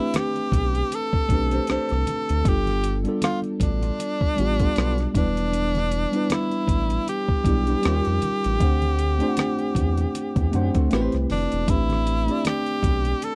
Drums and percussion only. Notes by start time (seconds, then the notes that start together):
0.14 cross-stick, closed hi-hat, muted conga, high conga
0.35 closed hi-hat, muted conga
0.52 kick, closed hi-hat, high conga, low conga
0.73 closed hi-hat, low conga
0.91 closed hi-hat, muted conga
1.13 kick
1.28 kick, closed hi-hat, high conga
1.51 closed hi-hat
1.67 cross-stick, closed hi-hat, muted conga
1.89 cross-stick, closed hi-hat, muted conga
2.07 closed hi-hat, high conga, low conga
2.29 closed hi-hat
2.45 kick, closed hi-hat
2.66 cross-stick, closed hi-hat, high conga
2.84 closed hi-hat
3.05 closed hi-hat
3.22 cross-stick, closed hi-hat, muted conga, high conga
3.42 closed hi-hat, muted conga
3.60 kick, closed hi-hat, high conga, low conga
3.81 closed hi-hat, low conga
3.99 closed hi-hat, muted conga
4.21 kick, muted conga
4.37 closed hi-hat, high conga
4.59 kick, closed hi-hat
4.76 cross-stick, closed hi-hat
4.98 cross-stick, closed hi-hat
5.14 kick, closed hi-hat, high conga, low conga
5.37 closed hi-hat
5.51 closed hi-hat, muted conga
5.74 cross-stick, closed hi-hat, high conga
5.91 closed hi-hat
6.13 closed hi-hat
6.30 cross-stick, closed hi-hat, muted conga, high conga
6.50 closed hi-hat, muted conga
6.67 kick, closed hi-hat, high conga, low conga
6.90 closed hi-hat, low conga
7.07 closed hi-hat, muted conga
7.28 kick, muted conga
7.44 kick, closed hi-hat, high conga
7.67 closed hi-hat
7.83 cross-stick, closed hi-hat
8.05 cross-stick, closed hi-hat
8.22 closed hi-hat, high conga, low conga
8.44 closed hi-hat
8.59 kick, closed hi-hat, muted conga
8.82 closed hi-hat, muted conga, high conga
8.99 closed hi-hat
9.20 closed hi-hat
9.37 cross-stick, closed hi-hat, muted conga, high conga
9.59 closed hi-hat
9.75 kick, closed hi-hat, high conga, low conga
9.97 closed hi-hat, low conga
10.15 closed hi-hat, muted conga
10.36 kick, closed hi-hat, muted conga
10.53 closed hi-hat, high conga
10.74 kick, closed hi-hat
10.91 cross-stick, closed hi-hat, muted conga
11.12 cross-stick, closed hi-hat, muted conga
11.30 open hi-hat, high conga, low conga
11.52 closed hi-hat
11.66 kick, closed hi-hat, muted conga
11.89 cross-stick, closed hi-hat, muted conga, high conga
12.07 closed hi-hat
12.28 closed hi-hat
12.45 cross-stick, closed hi-hat, muted conga, high conga
12.66 closed hi-hat
12.83 kick, closed hi-hat, high conga, low conga
13.04 closed hi-hat, low conga
13.22 closed hi-hat, muted conga